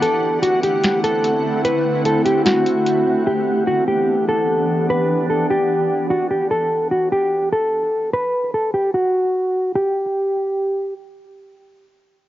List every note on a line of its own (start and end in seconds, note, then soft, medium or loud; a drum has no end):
0.00 3.24 D3 medium
0.00 3.24 A3 medium
0.00 3.24 C4 medium
0.00 3.24 E4 medium
0.00 0.40 A4 medium
0.00 6.47 F#5 medium
0.00 closed hi-hat medium
0.43 0.62 F#4 medium
0.43 closed hi-hat medium
0.63 1.02 G4 medium
0.63 closed hi-hat medium
0.84 snare loud
0.84 closed hi-hat medium
1.04 1.61 A4 medium
1.04 closed hi-hat medium
1.24 closed hi-hat medium
1.65 2.03 B4 loud
1.65 closed hi-hat medium
2.05 2.25 A4 medium
2.05 closed hi-hat medium
2.25 2.45 G4 medium
2.25 closed hi-hat medium
2.46 3.23 F#4 medium
2.46 snare loud
2.46 closed hi-hat medium
2.66 closed hi-hat medium
2.86 closed hi-hat medium
3.27 6.48 E3 medium
3.27 6.48 B3 medium
3.27 6.48 D4 medium
3.27 3.65 G4 medium
3.27 6.48 G4 medium
3.67 3.87 F#4 medium
3.88 4.26 G4 medium
4.28 4.85 A4 medium
4.90 5.28 B4 loud
5.30 5.49 A4 medium
5.50 6.07 G4 medium
6.10 6.30 F#4 medium
6.31 6.50 G4 medium
6.51 6.89 A4 medium
6.91 7.11 F#4 medium
7.12 7.50 G4 medium
7.52 8.10 A4 medium
8.13 8.51 B4 loud
8.54 8.73 A4 medium
8.74 8.93 G4 medium
8.94 9.71 F#4 medium
9.76 10.93 G4 medium